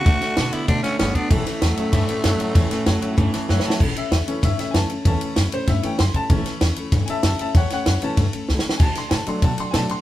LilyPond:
<<
  \new Staff \with { instrumentName = "Upright piano" } { \time 4/4 \key a \mixolydian \tempo 4 = 192 <d'' fis'' a''>8 <d'' fis'' a''>8 <d'' fis'' a''>8 <d'' fis'' a''>8 <d'' fis'' a''>8 <d'' fis'' a''>8 <d'' fis'' b''>8 <d'' fis'' a''>8 | <cis'' e'' a''>8 cis''8 <cis'' e'' a''>8 <cis'' e'' a''>8 <cis'' e'' a''>8 <cis'' e'' a''>8 <cis'' e'' a''>8 <cis'' e'' a''>8 | <cis'' e'' a''>8 <cis'' e'' a''>8 <cis'' e'' a''>8 <cis'' e'' a''>8 <cis'' e'' a''>8 <cis'' e'' a''>8 <cis'' e'' fis''>8 <cis'' e'' a''>8 | r8 e''4. e''8 e''8 <gis'' a''>4 |
a''4 r8 c''8 e''8 g''8 c'''8 a''8~ | a''8 r2 <e'' gis'' a''>8 <e'' a''>8 <e'' a''>8 | <cis'' fis''>8 <cis'' fis''>8 <cis'' fis''>8 a''2 r8 | <gis'' a''>8 c'''8 <gis'' a''>8 c'''8 a''8 c'''8 <gis'' a''>8 c'''8 | }
  \new Staff \with { instrumentName = "Upright piano" } { \time 4/4 \key a \mixolydian r1 | r1 | r1 | r4. <e a cis'>4. <e a cis'>8 r8 |
<e a cis'>4. r4 <e a cis'>8 r4 | <e a cis'>1 | r4. <e a cis'>8 r2 | r4. <fis a d'>4. <fis a d'>8 r8 | }
  \new Staff \with { instrumentName = "Tenor saxophone" } { \time 4/4 \key a \mixolydian fis'4. e'8 d'8 cis'8 cis'8 d'8 | a1~ | a2. r4 | r1 |
r1 | r1 | r1 | r1 | }
  \new Staff \with { instrumentName = "Steel-string acoustic guitar" } { \time 4/4 \key a \mixolydian <d a d' fis'>8 <a d' fis'>8 <d a d' fis'>8 <a d' fis'>8 <d a d' fis'>8 <a d' fis'>8 <d a d' fis'>8 <a d' fis'>8 | <a, e a cis' e'>8 <a cis' e'>8 <e a cis' e'>8 <a cis' e'>8 <a, e a cis' e'>8 <a cis' e'>8 <e a cis' e'>8 <a cis' e'>8 | <a, e a cis' e'>8 <a cis' e'>8 <e a cis' e'>8 <a cis' e'>8 <a, e a cis' e'>8 <a cis' e'>8 <e a cis' e'>8 <a cis' e'>8 | <a, e a cis' e'>8 <a cis' e'>8 <e a cis' e'>8 <a cis' e'>8 <a, e a cis' e'>8 <a cis' e'>8 <e a cis' e'>8 <a cis' e'>8 |
<a, e a cis' e'>8 <a cis' e'>8 <e a cis' e'>8 <a cis' e'>8 <a, e a cis' e'>8 <a cis' e'>8 <e a cis' e'>8 <a cis' e'>8 | <a, e a cis' e'>8 <a cis' e'>8 <e a cis' e'>8 <a cis' e'>8 <a, e a cis' e'>8 <a cis' e'>8 <a cis'>8 <a cis' e'>8 | <a, e a cis' e'>8 <a cis' e'>8 <e a cis' e'>8 <a cis' e'>8 <a, e a cis' e'>8 <a cis' e'>8 <e a cis' e'>8 <a cis' e'>8 | <d a d' fis'>8 <a d' fis'>8 <d a d' fis'>8 <a d' fis'>8 <d a d' fis'>8 <a d' fis'>8 <d a d' fis'>8 <a d' fis'>8 | }
  \new Staff \with { instrumentName = "Clean electric guitar" } { \clef bass \time 4/4 \key a \mixolydian <d a>8 <d a>8 <d b>8 <d b>8 <d a>8 <d a>8 <d b>8 <d b>8 | <a, e>8 <a, e>8 <a, fis>8 <a, fis>8 <a, e>8 <a, e>8 <a, fis>8 <a, fis>8 | <a, e>8 <a, e>8 <a, fis>8 <a, fis>8 <a, e>8 <a, e>8 <a, fis>8 <a, fis>8 | r1 |
r1 | r1 | r1 | r1 | }
  \new Staff \with { instrumentName = "Upright bass" } { \clef bass \time 4/4 \key a \mixolydian d,8 r8 b,8 r8 b,8 r8 g,,8 r8 | a,,8 r8 e,8 r8 g,8 r8 fis,8 r8 | e,8 r8 fis,8 r8 g,8 r8 fis,8 r8 | a,,8 r8 e,8 r8 g,8 r8 fis,8 r8 |
e,8 r8 fis,8 r8 g,8 r8 fis,8 r8 | a,,8 r8 e,8 r8 g,8 r8 fis,8 r8 | e,8 r8 fis,8 r8 g,8 r8 cis,8 r8 | d,8 r8 a,8 r8 b,8 r8 b,8 r8 | }
  \new DrumStaff \with { instrumentName = "Drums" } \drummode { \time 4/4 <bd cymr sn>8 <cymr sn>8 <cymr sn>8 cymr8 <bd cymr>8 <cymr sn>8 <cymr sn>8 <bd cymr>8 | <bd cymr>8 <cymr sn>8 <cymr sn>8 cymr8 <bd cymr sn>8 cymr8 <cymr sn>8 cymr8 | <bd cymr sn>8 <cymr sn>8 <cymr sn>8 cymr8 <bd cymr>8 <cymr sn>8 \tuplet 3/2 { sn8 sn8 sn8 } | <cymc bd>8 cymr8 <cymr sn>8 cymr8 <bd cymr sn>8 <cymr sn>8 <cymr sn>8 cymr8 |
<bd cymr>8 cymr8 <cymr sn>8 cymr8 <bd cymr sn>8 cymr8 <cymr sn>8 <bd cymr>8 | <bd cymr>8 <cymr sn>8 <cymr sn>8 cymr8 <bd cymr sn>8 cymr8 <cymr sn>8 cymr8 | <bd cymr sn>8 <cymr sn>8 <cymr sn>8 cymr8 <bd cymr sn>8 cymr8 \tuplet 3/2 { sn8 sn8 sn8 } | <cymc bd cymr>8 <cymr sn>8 <cymr sn>8 cymr8 <bd cymr>8 cymr8 <cymr sn>8 cymr8 | }
>>